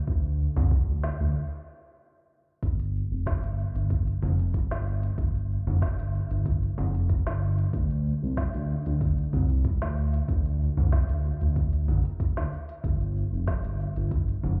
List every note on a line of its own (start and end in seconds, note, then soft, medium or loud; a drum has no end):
0.08 0.48 D2 medium
0.08 kick medium
0.08 shaker soft
0.25 shaker soft
0.40 shaker medium
0.56 0.78 C2 medium
0.56 low conga medium
0.56 shaker soft
0.71 kick loud
0.71 shaker soft
0.88 1.10 D2 medium
0.88 shaker soft
1.03 snare medium
1.03 shaker medium
1.20 1.35 D2 loud
1.20 shaker soft
2.63 3.03 G1 medium
2.63 kick loud
2.63 closed hi-hat medium
2.63 shaker soft
2.80 closed hi-hat soft
2.80 shaker soft
2.96 shaker medium
3.11 3.33 F1 medium
3.11 shaker soft
3.26 kick loud
3.26 snare medium
3.26 closed hi-hat medium
3.26 shaker soft
3.43 3.65 G1 medium
3.43 closed hi-hat soft
3.43 shaker soft
3.59 shaker medium
3.75 4.15 G1 loud
3.75 closed hi-hat soft
3.75 shaker soft
3.90 kick loud
3.90 closed hi-hat medium
3.90 shaker soft
4.07 closed hi-hat soft
4.07 shaker soft
4.22 4.63 F1 medium
4.22 low conga medium
4.22 shaker medium
4.39 closed hi-hat soft
4.39 shaker soft
4.54 kick loud
4.54 closed hi-hat medium
4.54 shaker soft
4.71 5.11 G1 medium
4.71 snare medium
4.87 shaker medium
5.03 closed hi-hat soft
5.03 shaker soft
5.18 5.58 G1 medium
5.18 kick loud
5.18 closed hi-hat medium
5.18 shaker soft
5.35 closed hi-hat soft
5.35 shaker soft
5.51 shaker medium
5.67 5.88 F1 medium
5.67 low conga medium
5.67 shaker soft
5.82 kick loud
5.82 snare medium
5.82 closed hi-hat medium
5.82 shaker soft
5.99 6.20 G1 medium
5.99 closed hi-hat soft
5.99 shaker soft
6.15 shaker medium
6.31 6.70 G1 loud
6.31 closed hi-hat soft
6.31 shaker soft
6.46 kick loud
6.46 closed hi-hat medium
6.46 shaker soft
6.63 closed hi-hat soft
6.63 shaker soft
6.78 7.18 F1 medium
6.78 low conga medium
6.78 shaker medium
6.95 closed hi-hat soft
6.95 shaker soft
7.10 kick loud
7.10 closed hi-hat medium
7.10 shaker soft
7.27 7.66 G1 medium
7.27 snare medium
7.42 shaker medium
7.59 closed hi-hat soft
7.59 shaker soft
7.73 8.14 D2 loud
7.73 kick loud
7.73 closed hi-hat medium
7.73 shaker soft
7.91 closed hi-hat soft
7.91 shaker soft
8.06 shaker medium
8.22 8.44 C2 medium
8.22 shaker soft
8.37 kick loud
8.37 snare medium
8.37 closed hi-hat medium
8.37 shaker soft
8.54 8.76 D2 medium
8.54 closed hi-hat soft
8.54 shaker soft
8.70 shaker medium
8.86 9.26 D2 medium
8.86 closed hi-hat soft
8.86 shaker soft
9.01 kick loud
9.01 closed hi-hat medium
9.01 shaker soft
9.18 closed hi-hat soft
9.18 shaker soft
9.33 9.74 C2 medium
9.33 low conga medium
9.33 shaker medium
9.50 closed hi-hat soft
9.50 shaker soft
9.65 kick loud
9.65 closed hi-hat medium
9.65 shaker soft
9.82 10.21 D2 medium
9.82 snare medium
9.82 shaker soft
9.97 shaker medium
10.14 closed hi-hat soft
10.14 shaker soft
10.28 10.69 D2 loud
10.28 kick loud
10.28 closed hi-hat medium
10.28 shaker soft
10.46 closed hi-hat soft
10.46 shaker soft
10.61 shaker medium
10.77 10.99 C2 medium
10.77 low conga medium
10.77 shaker soft
10.92 kick loud
10.92 snare medium
10.92 closed hi-hat medium
10.92 shaker soft
11.09 11.31 D2 medium
11.09 closed hi-hat soft
11.09 shaker soft
11.25 shaker medium
11.41 11.90 D2 medium
11.41 closed hi-hat soft
11.41 shaker soft
11.56 kick loud
11.56 closed hi-hat medium
11.56 shaker soft
11.73 closed hi-hat soft
11.73 shaker soft
11.88 12.00 A1 medium
11.88 low conga medium
11.88 shaker medium
12.05 closed hi-hat soft
12.05 shaker soft
12.20 kick loud
12.20 closed hi-hat medium
12.20 shaker soft
12.37 12.47 D2 medium
12.37 snare medium
12.37 shaker soft
12.53 shaker medium
12.69 closed hi-hat soft
12.69 shaker soft
12.84 13.24 G1 loud
12.84 kick loud
12.84 closed hi-hat medium
12.84 shaker soft
13.01 closed hi-hat soft
13.01 shaker soft
13.17 shaker medium
13.33 13.54 F1 medium
13.33 shaker soft
13.48 kick loud
13.48 snare medium
13.48 closed hi-hat medium
13.48 shaker soft
13.64 13.86 G1 medium
13.64 closed hi-hat soft
13.64 shaker soft
13.80 shaker medium
13.96 14.36 G1 medium
13.96 closed hi-hat soft
13.96 shaker soft
14.11 kick loud
14.11 closed hi-hat medium
14.11 shaker soft
14.28 closed hi-hat soft
14.28 shaker soft
14.43 14.60 F1 medium
14.43 low conga medium
14.43 shaker medium